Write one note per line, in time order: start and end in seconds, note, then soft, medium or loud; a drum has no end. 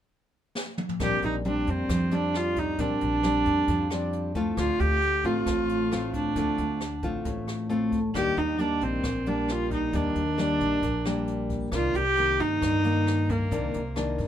0.55 snare soft
0.78 mid tom medium
0.89 floor tom medium
1.00 1.21 A#1 medium
1.00 1.87 A#2 medium
1.00 1.41 G3 medium
1.00 1.41 C4 medium
1.00 1.41 D4 medium
1.00 1.22 G4 medium
1.00 kick medium
1.00 cross-stick medium
1.00 closed hi-hat medium
1.22 1.64 A#1 medium
1.22 1.34 D#4 medium
1.22 closed hi-hat soft
1.45 2.08 G3 medium
1.45 2.08 C4 medium
1.45 2.08 D4 medium
1.45 1.71 D4 medium
1.45 closed hi-hat soft
1.67 1.88 F2 medium
1.67 2.16 C4 medium
1.67 closed hi-hat soft
1.89 2.75 F2 medium
1.89 2.76 F3 soft
1.89 kick medium
1.89 cross-stick medium
1.89 closed hi-hat medium
2.11 2.75 G3 medium
2.11 2.75 C4 medium
2.11 2.75 D4 medium
2.11 2.38 D4 medium
2.11 closed hi-hat soft
2.34 2.60 F4 medium
2.34 cross-stick soft
2.34 closed hi-hat soft
2.56 2.82 D#4 medium
2.56 kick soft
2.56 closed hi-hat soft
2.78 2.99 A#1 medium
2.78 3.66 A#2 medium
2.78 3.20 G3 medium
2.78 3.20 C4 medium
2.78 3.20 D4 medium
2.78 4.36 D4 medium
2.78 kick medium
2.78 closed hi-hat medium
3.01 3.43 A#1 medium
3.01 closed hi-hat soft
3.23 3.87 G3 medium
3.23 3.87 C4 medium
3.23 3.87 D4 medium
3.23 cross-stick medium
3.23 closed hi-hat soft
3.45 3.67 F2 medium
3.45 closed hi-hat soft
3.68 4.53 F2 medium
3.68 4.55 F3 medium
3.68 kick medium
3.68 closed hi-hat medium
3.90 4.32 G3 medium
3.90 4.32 C4 medium
3.90 4.32 D4 medium
3.90 cross-stick medium
3.90 closed hi-hat soft
4.13 closed hi-hat soft
4.35 4.98 A3 medium
4.35 4.99 C4 medium
4.35 4.99 F4 medium
4.35 kick medium
4.35 closed hi-hat soft
4.57 4.78 D2 medium
4.57 5.45 D3 medium
4.57 4.81 F4 medium
4.57 kick medium
4.57 cross-stick medium
4.57 closed hi-hat medium
4.80 5.21 D2 medium
4.80 5.27 G4 loud
4.80 closed hi-hat soft
5.02 closed hi-hat soft
5.24 5.45 A1 medium
5.24 5.88 A3 medium
5.24 5.88 C4 medium
5.24 5.88 F4 medium
5.24 6.14 F4 medium
5.24 closed hi-hat soft
5.46 6.32 A1 medium
5.46 6.34 A2 medium
5.46 kick medium
5.46 cross-stick medium
5.46 closed hi-hat medium
5.69 closed hi-hat soft
5.91 6.33 A3 medium
5.91 6.33 C4 soft
5.91 6.33 F4 medium
5.91 cross-stick medium
5.91 closed hi-hat soft
6.13 7.00 D4 medium
6.13 kick soft
6.13 closed hi-hat soft
6.36 6.57 D2 medium
6.36 7.23 D3 medium
6.36 6.80 A3 medium
6.36 6.81 C4 medium
6.36 6.81 F4 medium
6.36 kick medium
6.36 closed hi-hat medium
6.58 7.00 D2 medium
6.58 closed hi-hat soft
6.80 cross-stick medium
6.80 closed hi-hat soft
7.03 7.24 A1 medium
7.03 7.66 A3 medium
7.03 7.67 C4 medium
7.03 7.67 F4 medium
7.03 kick soft
7.03 closed hi-hat soft
7.25 8.11 A1 medium
7.25 8.13 A2 medium
7.25 kick medium
7.25 closed hi-hat medium
7.48 cross-stick medium
7.48 closed hi-hat soft
7.69 7.99 A3 medium
7.69 7.99 C4 medium
7.69 7.99 F4 soft
7.69 closed hi-hat soft
7.92 kick medium
7.92 closed hi-hat soft
8.14 8.36 D#2 medium
8.14 9.02 D#3 medium
8.14 8.55 G3 medium
8.14 8.56 A#3 soft
8.14 8.56 D4 medium
8.14 8.40 G4 medium
8.14 kick medium
8.14 cross-stick medium
8.14 closed hi-hat medium
8.37 8.79 D#2 medium
8.37 8.62 D#4 medium
8.37 closed hi-hat soft
8.58 9.03 G3 medium
8.58 9.04 A#3 medium
8.58 9.04 D4 medium
8.58 8.85 D4 medium
8.58 closed hi-hat soft
8.81 9.02 A#1 medium
8.81 9.29 C4 medium
8.81 closed hi-hat soft
9.03 9.89 A#1 medium
9.03 9.91 A#2 medium
9.03 kick medium
9.03 cross-stick medium
9.03 closed hi-hat medium
9.26 9.90 G3 medium
9.26 9.90 A#3 medium
9.26 9.90 D4 medium
9.26 9.52 D4 medium
9.26 closed hi-hat soft
9.48 9.72 F4 medium
9.48 cross-stick soft
9.48 closed hi-hat soft
9.71 9.97 D#4 medium
9.71 kick soft
9.71 closed hi-hat soft
9.93 10.14 D#2 medium
9.93 10.81 D#3 medium
9.93 10.22 G3 medium
9.93 10.22 A#3 medium
9.93 10.22 D4 medium
9.93 11.51 D4 medium
9.93 kick medium
9.93 closed hi-hat medium
10.15 10.57 D#2 medium
10.15 closed hi-hat soft
10.38 10.82 G3 medium
10.38 10.83 A#3 medium
10.38 10.83 D4 medium
10.38 cross-stick medium
10.38 closed hi-hat soft
10.60 10.81 A#1 medium
10.60 closed hi-hat soft
10.82 11.68 A#1 loud
10.82 11.70 A#2 medium
10.82 kick medium
10.82 closed hi-hat medium
11.05 11.69 G3 medium
11.05 11.69 A#3 medium
11.05 11.69 D4 medium
11.05 cross-stick medium
11.05 closed hi-hat soft
11.28 closed hi-hat soft
11.50 kick medium
11.50 closed hi-hat soft
11.72 11.93 C2 medium
11.72 12.60 C3 medium
11.72 12.01 D#3 medium
11.72 12.01 A#3 soft
11.72 12.02 D4 medium
11.72 11.97 F4 medium
11.72 kick medium
11.72 cross-stick medium
11.72 closed hi-hat medium
11.94 12.36 C2 medium
11.94 12.42 G4 loud
11.94 closed hi-hat soft
12.17 12.81 D#3 medium
12.17 12.81 A#3 medium
12.17 closed hi-hat soft
12.40 12.60 G2 medium
12.40 13.33 D#4 loud
12.40 closed hi-hat soft
12.61 13.49 G2 medium
12.61 13.48 G2 medium
12.61 kick medium
12.61 cross-stick medium
12.61 closed hi-hat medium
12.84 13.48 D#3 medium
12.84 13.48 A#3 medium
12.84 closed hi-hat soft
13.07 cross-stick medium
13.07 closed hi-hat soft
13.29 14.20 A#3 medium
13.29 kick medium
13.29 closed hi-hat soft
13.51 13.72 C2 medium
13.51 14.28 C3 soft
13.51 13.80 D#3 medium
13.51 13.80 A#3 medium
13.51 13.81 D4 medium
13.51 kick medium
13.51 closed hi-hat medium
13.74 14.16 C2 medium
13.74 closed hi-hat soft
13.96 14.28 D#3 medium
13.96 14.28 A#3 medium
13.96 14.28 D4 medium
13.96 cross-stick medium
13.96 closed hi-hat soft
14.18 14.28 G2 medium
14.18 kick soft
14.18 closed hi-hat soft